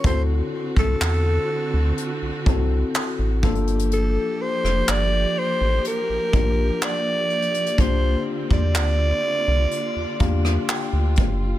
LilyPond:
<<
  \new Staff \with { instrumentName = "Alto saxophone" } { \time 4/4 \key g \dorian \tempo 4 = 62 c''8 r16 a'2 r4 r16 | a'8 c''8 d''8 c''8 bes'4 d''4 | c''8 r16 d''2 r4 r16 | }
  \new Staff \with { instrumentName = "Tine electric piano" } { \time 4/4 \key g \dorian << { r1 | r1 | r2 r8 f''8 g''4 | } \\ { <c' e' fis' a'>4. r4 <c' e' fis' a'>4 <bes d' f' a'>8~ | <bes d' f' a'>4 r4. <bes d' f' g'>4~ <bes d' f' g'>16 r16 | <bes d' f' g'>4. r4 <bes d' f' g'>4~ <bes d' f' g'>16 r16 | } >> }
  \new Staff \with { instrumentName = "String section" } { \time 4/4 \key g \dorian << { <d fis'>2.~ <d fis'>8 <f g'>8~ | <f g'>1 | <d f'>1 | } \\ { c'2.~ c'8 bes8~ | bes1 | c'2 d'2 | } >> }
  \new Staff \with { instrumentName = "Analog synth bass" } { \clef bass \time 4/4 \key g \dorian d,8 r16 c,16 e,8 r16 d,16 r16 c,16 c,8 r16 a,,16 g,,8~ | g,,8 r16 f,,16 g,,8 r16 a,,16 r16 bes,,16 bes,,8 r4 | c,8 r16 e,16 d,8 r16 c,16 r16 e,16 e,8 r16 d,16 fis,,8 | }
  \new DrumStaff \with { instrumentName = "Drums" } \drummode { \time 4/4 <hh bd>8. <bd ss>16 hc4 hh8 <hh bd>8 <hc hh>8 <hh bd>32 hh32 hh32 hh32 | hh8. ss16 hc4 hh8 <hh bd>8 hc8 hh32 hh32 hh32 hh32 | <hh bd>8. bd16 <hc hh>4 hh8 <hh bd>16 ss16 hc8 <hh bd>8 | }
>>